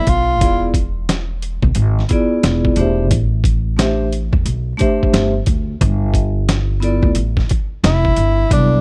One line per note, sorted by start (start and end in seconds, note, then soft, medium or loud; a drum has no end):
0.00 0.10 E4 loud
0.07 0.42 B1 medium
0.07 0.76 F4 loud
0.07 kick loud
0.07 closed hi-hat medium
0.40 1.61 E1 loud
0.40 0.67 B3 medium
0.40 0.68 E4 medium
0.40 0.68 F4 medium
0.40 0.69 G#4 medium
0.40 0.69 D5 medium
0.40 kick loud
0.40 closed hi-hat medium
0.74 kick medium
0.74 closed hi-hat medium
1.09 snare medium
1.09 closed hi-hat medium
1.42 closed hi-hat medium
1.63 1.72 B1 medium
1.63 kick medium
1.75 2.02 G#1 medium
1.75 closed hi-hat medium
1.99 snare soft
2.09 3.06 B3 medium
2.09 3.06 E4 medium
2.09 3.07 F4 medium
2.09 3.07 G#4 medium
2.09 kick medium
2.09 closed hi-hat medium
2.13 3.08 D5 medium
2.43 2.70 E1 medium
2.43 snare loud
2.43 closed hi-hat medium
2.65 kick medium
2.76 3.11 E1 medium
2.76 3.04 A3 medium
2.76 3.04 D4 medium
2.76 3.04 G4 medium
2.76 3.05 C5 medium
2.76 closed hi-hat medium
2.80 3.06 E5 medium
3.11 4.30 A1 loud
3.11 kick loud
3.11 closed hi-hat medium
3.44 kick medium
3.44 closed hi-hat medium
3.77 4.04 A3 medium
3.77 4.05 D4 medium
3.77 4.05 G4 medium
3.77 4.06 C5 medium
3.77 4.06 E5 medium
3.77 snare loud
3.77 closed hi-hat loud
4.12 closed hi-hat medium
4.33 4.42 E2 medium
4.33 kick medium
4.45 4.72 B1 medium
4.45 closed hi-hat medium
4.77 5.30 A3 medium
4.77 5.30 D4 medium
4.77 5.31 G4 medium
4.77 5.31 C5 medium
4.77 kick medium
4.77 closed hi-hat medium
4.81 5.32 E5 loud
5.03 kick medium
5.13 5.39 G1 loud
5.13 snare loud
5.13 closed hi-hat medium
5.46 5.73 D2 medium
5.46 kick loud
5.46 closed hi-hat medium
5.81 7.00 G1 loud
5.81 kick loud
5.81 closed hi-hat medium
6.14 kick medium
6.14 closed hi-hat medium
6.49 snare medium
6.49 closed hi-hat medium
6.80 7.08 B3 medium
6.80 7.08 E4 medium
6.80 7.09 F4 medium
6.80 7.09 A4 medium
6.80 7.10 D5 medium
6.80 closed hi-hat medium
7.03 7.12 D2 medium
7.03 kick medium
7.15 7.42 A1 medium
7.15 closed hi-hat loud
7.37 kick medium
7.37 snare soft
7.49 kick medium
7.49 closed hi-hat medium
7.83 8.09 F1 medium
7.83 8.48 E4 medium
7.83 snare loud
7.83 closed hi-hat medium
8.05 kick medium
8.17 8.43 G1 medium
8.17 closed hi-hat medium
8.49 8.81 C2 loud
8.49 8.76 F#3 medium
8.49 8.77 B3 medium
8.49 8.81 D4 medium
8.49 8.77 E4 soft
8.49 8.78 A4 medium
8.49 8.78 D5 medium
8.49 kick loud
8.49 closed hi-hat medium